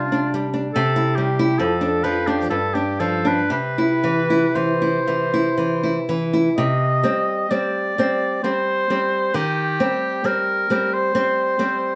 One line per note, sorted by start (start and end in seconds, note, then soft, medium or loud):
0.00 0.70 C3 soft
0.00 0.24 G3 soft
0.00 0.31 F4 medium
0.12 0.46 D4 soft
0.34 0.67 G3 soft
0.54 0.75 D4 soft
0.74 1.57 C3 soft
0.74 1.17 A4 medium
0.96 1.29 E4 soft
1.15 1.51 G3 soft
1.15 1.60 G4 soft
1.39 1.60 E4 soft
1.59 2.47 F2 soft
1.59 2.05 A4 soft
1.81 2.17 D4 soft
2.03 2.40 F3 soft
2.03 2.28 B4 medium
2.27 2.50 D4 soft
2.27 2.49 G4 soft
2.50 3.48 G2 soft
2.50 2.76 A4 medium
2.74 3.15 D4 soft
2.74 3.01 G4 soft
3.00 3.41 F3 soft
3.00 3.29 A4 soft
3.25 3.51 D4 soft
3.25 3.52 B4 medium
3.50 6.53 C3 soft
3.50 4.57 B4 medium
3.78 4.20 E4 soft
4.04 4.46 E3 soft
4.30 4.72 E4 soft
4.55 4.97 E3 soft
4.55 6.08 C5 soft
4.82 5.23 E4 soft
5.07 5.48 E3 soft
5.34 5.73 E4 soft
5.58 5.98 E3 soft
5.83 6.24 E4 soft
6.09 6.48 E3 soft
6.33 6.57 E4 soft
6.58 7.03 C3 soft
6.58 7.52 D#5 medium
7.03 7.46 G3 soft
7.03 7.46 C4 soft
7.50 7.93 G3 soft
7.50 7.93 C4 soft
7.50 8.43 D5 medium
7.98 8.40 G3 soft
7.98 8.41 C4 soft
8.43 8.85 G3 soft
8.43 8.85 C4 soft
8.43 9.37 C5 medium
8.90 9.31 G3 soft
8.90 9.31 C4 soft
9.34 9.78 D#3 soft
9.34 10.27 G4 medium
9.80 10.21 G3 soft
9.80 10.21 C4 soft
10.24 10.66 G3 soft
10.24 10.66 C4 soft
10.24 10.95 A#4 medium
10.70 11.11 G3 soft
10.70 11.11 C4 soft
10.94 11.95 C5 medium
11.15 11.56 G3 soft
11.15 11.55 C4 soft
11.59 11.95 G3 soft
11.59 11.95 C4 soft